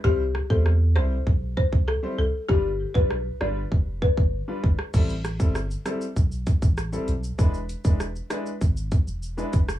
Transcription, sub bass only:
X:1
M:4/4
L:1/16
Q:1/4=98
K:Am
V:1 name="Sub bass" clef=bass
C,,3 E,,3 C,,2 B,,,3 C,,2 z C,, z | G,,,3 B,,,3 G,,,2 F,,,3 G,,,2 z G,,, z | A,,,3 G,,,3 z2 B,,,3 A,,,3 B,,,2 | E,,,3 E,,,3 z2 ^G,,,3 E,,,3 F,,,2 |]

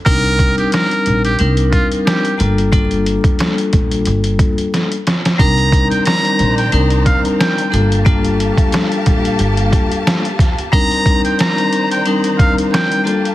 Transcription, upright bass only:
X:1
M:4/4
L:1/16
Q:"Swing 16ths" 1/4=90
K:Cm
V:1 name="Upright bass" clef=bass
C,,3 z3 B,,,2 C,,2 z4 G,,,2- | G,,,3 z3 B,,,2 G,,,2 z6 | C,,3 z3 B,,,2 C,,2 z4 G,,,2- | G,,,3 z3 B,,,2 G,,,2 z6 |
z16 |]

